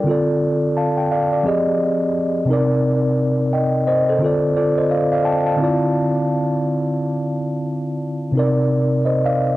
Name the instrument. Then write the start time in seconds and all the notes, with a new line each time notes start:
tine electric piano
0.04 D3 C4 F4
0.09 A4 D5
0.77 F5 A5
0.97 G5
1.11 D5 F5
1.33 D5
1.43 F3 C4 G4 G#4 D#5
2.45 C3 C4
2.49 D#4 A#4 D5
3.53 D#5 G5
3.87 C5 D#5
4.09 A4 C5
4.18 D3 C4 F4
4.24 A4 D5
4.56 F4 A4 D5
4.77 A4 C5 D#5
4.91 D5 F5
5.12 D5 F5
5.25 G5 A5
5.46 F5 A5
5.56 D3 C4 E4
5.62 F4 D5
8.32 C3 C4 D#4
8.37 A#4 D5
9.05 C5 D#5
9.26 D5 F5